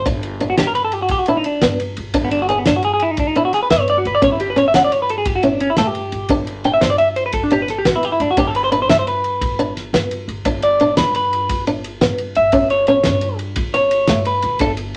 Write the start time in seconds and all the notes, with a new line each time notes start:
0.06 G1 D4, kick, ride
0.23 ride
0.40 D4, ride
0.50 F#4
0.58 G2 D4 G4, snare, ride
0.67 A#4
0.75 B4, ride
0.84 A4
0.92 G4, ride
1.02 F#4
1.08 G1 G4, kick, ride
1.19 F#4
1.26 D4 E4, ride
1.37 D#4
1.44 D4, ride
1.62 G2 B3, snare, ride
1.80 ride
1.97 G1, ride
2.14 G1 D4, kick, ride
2.24 B3
2.31 D4, ride
2.42 F#4
2.49 D4 G#4, ride
2.58 B3
2.66 G2 D4, snare, ride
2.76 F#4
2.83 G#4, ride
2.94 G#4
3.00 E4, ride
3.11 D#4
3.17 G1 D4, kick, ride
3.28 D#4
3.35 D4 E4, ride
3.45 F#4
3.53 G#4, snare, ride
3.63 B4
3.70 G2 B3 E5, snare, ride
3.80 C#5
3.88 D5, ride
3.98 F#4
4.05 G1 B4, ride
4.15 D5
4.22 G1 C#4 C#5, kick, ride
4.32 E4
4.40 G4, ride
4.50 B4
4.56 C#4 C#5, ride
4.68 E5
4.74 G2 C#4 F#5, snare, ride
4.85 D5
4.92 C#5, ride
5.02 B4
5.09 A4, ride
5.18 G#4
5.25 G1 G4, kick, ride
5.35 F#4
5.43 C#4 E4, ride
5.54 D4
5.60 C#4, ride
5.70 E4
5.77 G2 A3 A4, snare, ride
5.87 G4
5.95 ride
6.12 G1, ride
6.29 G1 D4, kick, ride
6.47 ride
6.64 D4 G5, ride
6.74 E5
6.81 G2 D4 C5, snare, ride
6.90 D5
6.98 E5, ride
7.16 C5, ride
7.26 B4
7.32 G1 A4, kick, ride
7.44 D4
7.50 D4 G4, ride
7.62 B4
7.68 A4, snare, ride
7.78 G4
7.85 G2 B3 F#4, kick, snare, ride
7.96 E4
8.03 G4, ride
8.12 E4
8.20 G1 D4, ride
8.31 F#4
8.37 G1 D4 G4, kick, ride
8.47 A4
8.55 B4, ride
8.64 C5
8.72 D4 B4, ride
8.82 C5
8.89 G2 D4 E5, snare, ride
8.99 C5
9.07 B4, ride
9.24 ride
9.41 G1, kick, ride
9.59 D4, ride
9.77 snare, ride
9.93 G2 B3, snare, ride
10.11 ride
10.28 G1, ride
10.45 G1 D4, kick, ride
10.62 D5, ride
10.80 D4, ride
10.97 G2 D4 B4, snare, ride
11.15 B4, ride
11.33 ride
11.49 G1, kick, ride
11.67 D4, ride
11.84 ride
12.01 G2 B3, snare, ride
12.18 ride
12.35 G1 E5, ride
12.52 G1 C#4, kick, ride
12.70 C#5, ride
12.87 C#4 C#5, ride
13.04 G2 C#4, snare, ride
13.21 ride
13.39 ride
13.56 G1, kick, ride
13.74 C#4 C#5, ride
13.91 ride
14.07 G2 A3, snare, ride
14.25 B4, ride
14.42 G1, ride
14.59 G1 D4 A4, kick, ride
14.77 ride